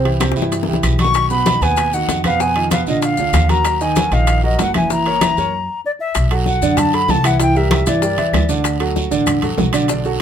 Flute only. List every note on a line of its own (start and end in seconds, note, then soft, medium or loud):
1.00 1.29 C#6 loud
1.31 1.64 B5 medium
1.62 1.95 G#5 medium
1.94 2.25 F#5 medium
2.25 2.42 F5 medium
2.41 2.71 G#5 loud
2.72 2.86 F5 medium
2.88 3.02 D#5 medium
3.03 3.51 F5 medium
3.50 3.83 A#5 medium
3.82 4.15 G#5 medium
4.14 4.44 F5 medium
4.45 4.59 D#5 medium
4.61 4.75 F#5 medium
4.76 4.90 G#5 medium
4.92 5.81 A#5 medium
5.86 5.92 D5 medium
6.00 6.29 E5 medium
6.47 6.79 F#5 medium
6.78 6.96 A5 loud
6.94 7.12 B5 medium
7.10 7.28 A5 loud
7.26 7.41 F#5 medium
7.42 7.58 G5 medium
7.57 7.72 E5 medium
7.72 7.90 E5 medium
7.88 8.50 D5 medium